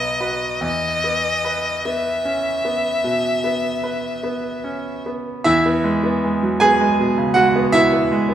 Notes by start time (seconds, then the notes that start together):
Already playing: B1 B3 D#5
0.20 F#4 B4
0.61 E2 D#5
1.04 B3
1.45 B4
1.85 B3 E5
2.25 C#4
2.65 B3
3.04 B2
3.44 B3
3.83 B4
4.23 B3
4.64 C#4
5.06 B3
5.44 E2 E4 E5
5.66 B3
5.84 G#3
6.04 B3
6.24 G#3
6.43 F#3
6.60 B3 G#4 G#5
6.81 G#3
7.00 B2
7.18 C#3
7.34 G#3 F#4 F#5
7.56 B3
7.72 B2 E4 E5
7.92 B3
8.11 G#3
8.29 B3